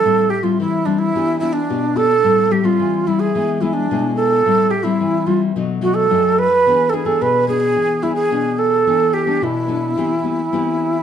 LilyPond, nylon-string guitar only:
\new Staff \with { instrumentName = "Nylon-string guitar" } { \time 4/4 \key a \minor \tempo 4 = 109 << { <g c' e'>8 r16 <g c' e'>8. <g c' e'>8 <b d' g'>8 <b d' g'>16 r16 <b d' g'>16 r16 <b d' g'>16 r16 | <g c' e'>8 <g c' e'>16 <g c'>8. <g c' e'>8 <gis b e'>8 <gis b e'>8 <gis b e'>4 | <g c' e'>8 r16 <g c' e'>8. <g c' e'>8 <fis a dis'>8 <fis a dis'>8 <fis a dis'>8. r16 | <b d' gis'>8 <b d' gis'>16 <b d' gis'>8. <b d' gis'>8. r16 <b d' gis'>8 <b d' gis'>4 |
<b d' a'>8. <b d' a'>8. <b d' a'>16 r16 <b c' g'>16 r16 <b c' g'>16 r16 <b c' g'>4 | } \\ { a,4 e4 e4 b,4 | a,4 e4 e4 b,4 | a,4 e4 b,4 fis,4 | e4 b,4 e4 b,4 |
e4 b,4 e4 e4 | } >> }